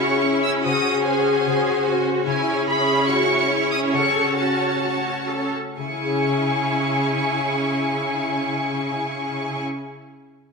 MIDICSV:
0, 0, Header, 1, 6, 480
1, 0, Start_track
1, 0, Key_signature, 4, "minor"
1, 0, Tempo, 405680
1, 769, Time_signature, 4, 2, 24, 8
1, 3648, Tempo, 429185
1, 5088, Tempo, 471328
1, 11359, End_track
2, 0, Start_track
2, 0, Title_t, "Violin section"
2, 0, Program_c, 0, 48
2, 0, Note_on_c, 0, 85, 49
2, 513, Note_on_c, 0, 88, 56
2, 524, Note_off_c, 0, 85, 0
2, 608, Note_off_c, 0, 88, 0
2, 761, Note_on_c, 0, 87, 57
2, 1229, Note_on_c, 0, 80, 53
2, 1237, Note_off_c, 0, 87, 0
2, 2406, Note_off_c, 0, 80, 0
2, 2684, Note_on_c, 0, 80, 57
2, 3128, Note_off_c, 0, 80, 0
2, 3176, Note_on_c, 0, 83, 68
2, 3655, Note_off_c, 0, 83, 0
2, 3663, Note_on_c, 0, 85, 58
2, 4355, Note_on_c, 0, 87, 58
2, 4361, Note_off_c, 0, 85, 0
2, 4444, Note_off_c, 0, 87, 0
2, 4601, Note_on_c, 0, 85, 58
2, 5081, Note_off_c, 0, 85, 0
2, 5085, Note_on_c, 0, 81, 50
2, 6255, Note_off_c, 0, 81, 0
2, 6534, Note_on_c, 0, 85, 33
2, 10435, Note_off_c, 0, 85, 0
2, 11359, End_track
3, 0, Start_track
3, 0, Title_t, "Violin section"
3, 0, Program_c, 1, 48
3, 0, Note_on_c, 1, 64, 43
3, 0, Note_on_c, 1, 73, 40
3, 722, Note_off_c, 1, 64, 0
3, 722, Note_off_c, 1, 73, 0
3, 773, Note_on_c, 1, 66, 38
3, 775, Note_on_c, 1, 72, 44
3, 2634, Note_off_c, 1, 66, 0
3, 2635, Note_off_c, 1, 72, 0
3, 2684, Note_on_c, 1, 64, 46
3, 2684, Note_on_c, 1, 73, 44
3, 4552, Note_off_c, 1, 64, 0
3, 4608, Note_on_c, 1, 66, 38
3, 6241, Note_off_c, 1, 73, 0
3, 6245, Note_off_c, 1, 66, 0
3, 6531, Note_on_c, 1, 68, 30
3, 6536, Note_on_c, 1, 80, 29
3, 10432, Note_off_c, 1, 68, 0
3, 10437, Note_off_c, 1, 80, 0
3, 11359, End_track
4, 0, Start_track
4, 0, Title_t, "Cello section"
4, 0, Program_c, 2, 48
4, 0, Note_on_c, 2, 66, 42
4, 283, Note_on_c, 2, 64, 38
4, 290, Note_off_c, 2, 66, 0
4, 757, Note_off_c, 2, 64, 0
4, 762, Note_on_c, 2, 66, 43
4, 1247, Note_off_c, 2, 66, 0
4, 1247, Note_on_c, 2, 68, 44
4, 1712, Note_off_c, 2, 68, 0
4, 1726, Note_on_c, 2, 68, 49
4, 2193, Note_off_c, 2, 68, 0
4, 2197, Note_on_c, 2, 66, 43
4, 2676, Note_off_c, 2, 66, 0
4, 2682, Note_on_c, 2, 64, 51
4, 3160, Note_off_c, 2, 64, 0
4, 3164, Note_on_c, 2, 68, 46
4, 3640, Note_off_c, 2, 68, 0
4, 3656, Note_on_c, 2, 66, 43
4, 4120, Note_off_c, 2, 66, 0
4, 4122, Note_on_c, 2, 64, 40
4, 4588, Note_off_c, 2, 64, 0
4, 4606, Note_on_c, 2, 69, 48
4, 5088, Note_on_c, 2, 66, 40
4, 5093, Note_off_c, 2, 69, 0
4, 5542, Note_off_c, 2, 66, 0
4, 5558, Note_on_c, 2, 66, 35
4, 6025, Note_off_c, 2, 66, 0
4, 6035, Note_on_c, 2, 69, 31
4, 6282, Note_off_c, 2, 69, 0
4, 6526, Note_on_c, 2, 49, 32
4, 10427, Note_off_c, 2, 49, 0
4, 11359, End_track
5, 0, Start_track
5, 0, Title_t, "Harp"
5, 0, Program_c, 3, 46
5, 0, Note_on_c, 3, 49, 38
5, 0, Note_on_c, 3, 56, 28
5, 0, Note_on_c, 3, 61, 31
5, 0, Note_on_c, 3, 64, 31
5, 46, Note_on_c, 3, 68, 34
5, 274, Note_off_c, 3, 64, 0
5, 288, Note_on_c, 3, 64, 33
5, 512, Note_off_c, 3, 68, 0
5, 526, Note_on_c, 3, 68, 31
5, 753, Note_off_c, 3, 49, 0
5, 767, Note_on_c, 3, 49, 41
5, 787, Note_off_c, 3, 61, 0
5, 789, Note_off_c, 3, 64, 0
5, 994, Note_off_c, 3, 68, 0
5, 1008, Note_on_c, 3, 68, 31
5, 1251, Note_on_c, 3, 66, 31
5, 1473, Note_off_c, 3, 68, 0
5, 1487, Note_on_c, 3, 68, 34
5, 1718, Note_off_c, 3, 49, 0
5, 1732, Note_on_c, 3, 49, 37
5, 1956, Note_off_c, 3, 66, 0
5, 1970, Note_on_c, 3, 66, 37
5, 2204, Note_on_c, 3, 60, 36
5, 2426, Note_off_c, 3, 68, 0
5, 2440, Note_on_c, 3, 68, 36
5, 2663, Note_off_c, 3, 49, 0
5, 2677, Note_on_c, 3, 49, 42
5, 2696, Note_off_c, 3, 56, 0
5, 2699, Note_off_c, 3, 60, 0
5, 2701, Note_off_c, 3, 66, 0
5, 2903, Note_off_c, 3, 68, 0
5, 2917, Note_on_c, 3, 68, 36
5, 3156, Note_on_c, 3, 64, 36
5, 3384, Note_off_c, 3, 68, 0
5, 3398, Note_on_c, 3, 68, 36
5, 3644, Note_on_c, 3, 56, 36
5, 3861, Note_off_c, 3, 68, 0
5, 3875, Note_on_c, 3, 68, 35
5, 4098, Note_off_c, 3, 64, 0
5, 4112, Note_on_c, 3, 64, 35
5, 4339, Note_off_c, 3, 68, 0
5, 4353, Note_on_c, 3, 68, 34
5, 4584, Note_off_c, 3, 49, 0
5, 4597, Note_on_c, 3, 49, 38
5, 4612, Note_off_c, 3, 56, 0
5, 4612, Note_off_c, 3, 64, 0
5, 4614, Note_off_c, 3, 68, 0
5, 4840, Note_on_c, 3, 69, 31
5, 5092, Note_on_c, 3, 66, 29
5, 5307, Note_off_c, 3, 69, 0
5, 5319, Note_on_c, 3, 69, 29
5, 5554, Note_on_c, 3, 57, 27
5, 5781, Note_off_c, 3, 69, 0
5, 5793, Note_on_c, 3, 69, 25
5, 6024, Note_off_c, 3, 66, 0
5, 6037, Note_on_c, 3, 66, 21
5, 6268, Note_off_c, 3, 69, 0
5, 6280, Note_on_c, 3, 69, 19
5, 6513, Note_off_c, 3, 49, 0
5, 6525, Note_on_c, 3, 49, 23
5, 6544, Note_off_c, 3, 69, 0
5, 6546, Note_off_c, 3, 57, 0
5, 6547, Note_off_c, 3, 66, 0
5, 6597, Note_on_c, 3, 61, 25
5, 6669, Note_on_c, 3, 64, 23
5, 6740, Note_on_c, 3, 68, 24
5, 6813, Note_on_c, 3, 76, 24
5, 10497, Note_off_c, 3, 49, 0
5, 10498, Note_off_c, 3, 61, 0
5, 10570, Note_off_c, 3, 64, 0
5, 10641, Note_off_c, 3, 68, 0
5, 10714, Note_off_c, 3, 76, 0
5, 11359, End_track
6, 0, Start_track
6, 0, Title_t, "Viola section"
6, 0, Program_c, 4, 48
6, 0, Note_on_c, 4, 61, 49
6, 2632, Note_off_c, 4, 61, 0
6, 2680, Note_on_c, 4, 61, 54
6, 6239, Note_off_c, 4, 61, 0
6, 6526, Note_on_c, 4, 64, 31
6, 6527, Note_on_c, 4, 61, 31
6, 10427, Note_off_c, 4, 64, 0
6, 10428, Note_off_c, 4, 61, 0
6, 11359, End_track
0, 0, End_of_file